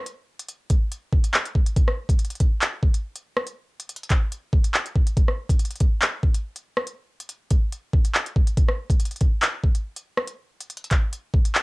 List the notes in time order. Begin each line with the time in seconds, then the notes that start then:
0.06 closed hi-hat
0.39 closed hi-hat
0.48 closed hi-hat
0.70 kick, closed hi-hat
0.92 closed hi-hat
1.13 kick
1.24 closed hi-hat
1.34 clap
1.45 closed hi-hat
1.55 kick
1.66 closed hi-hat
1.76 kick, closed hi-hat
1.88 cross-stick
2.09 kick, closed hi-hat
2.19 closed hi-hat
2.25 closed hi-hat
2.30 closed hi-hat
2.35 closed hi-hat
2.40 kick, closed hi-hat
2.62 clap, closed hi-hat
2.83 kick
2.94 closed hi-hat
3.16 closed hi-hat
3.37 cross-stick
3.47 closed hi-hat
3.80 closed hi-hat
3.89 closed hi-hat
3.96 closed hi-hat
4.03 closed hi-hat
4.10 kick, clap, closed hi-hat
4.32 closed hi-hat
4.53 kick
4.64 closed hi-hat
4.74 clap
4.86 closed hi-hat
4.96 kick
5.07 closed hi-hat
5.17 kick, closed hi-hat
5.28 cross-stick
5.49 kick, closed hi-hat
5.59 closed hi-hat
5.65 closed hi-hat
5.71 closed hi-hat
5.76 closed hi-hat
5.80 kick, closed hi-hat
6.02 clap, closed hi-hat
6.23 kick
6.34 closed hi-hat
6.56 closed hi-hat
6.77 cross-stick
6.87 closed hi-hat
7.20 closed hi-hat
7.29 closed hi-hat
7.51 kick, closed hi-hat
7.72 closed hi-hat
7.93 kick
8.05 closed hi-hat
8.15 clap
8.26 closed hi-hat
8.36 kick
8.47 closed hi-hat
8.57 kick, closed hi-hat
8.69 cross-stick
8.90 kick, closed hi-hat
9.00 closed hi-hat
9.05 closed hi-hat
9.11 closed hi-hat
9.16 closed hi-hat
9.21 kick, closed hi-hat
9.42 clap, closed hi-hat
9.64 kick
9.75 closed hi-hat
9.96 closed hi-hat
10.17 cross-stick
10.27 closed hi-hat
10.61 closed hi-hat
10.70 closed hi-hat
10.77 closed hi-hat
10.84 closed hi-hat
10.91 kick, clap, closed hi-hat
11.13 closed hi-hat
11.34 kick
11.45 closed hi-hat
11.55 clap